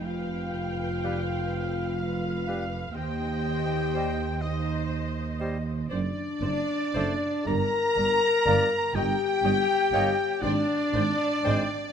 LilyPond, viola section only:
\new Staff \with { instrumentName = "Viola section" } { \time 6/8 \key c \minor \tempo 4. = 40 << { g''2 f''4 | ees''4. ees''4. | d''8 d''8 d''8 d''8 d''8 d''8 | ees''8 ees''8 ees''8 g''8 g''8 g''8 | } \\ { b'2. | c''4. c''4. | c''8 c''8 c''8 bes'8 bes'8 bes'8 | des''8 des''8 des''8 c''8 c''8 c''8 | } >> }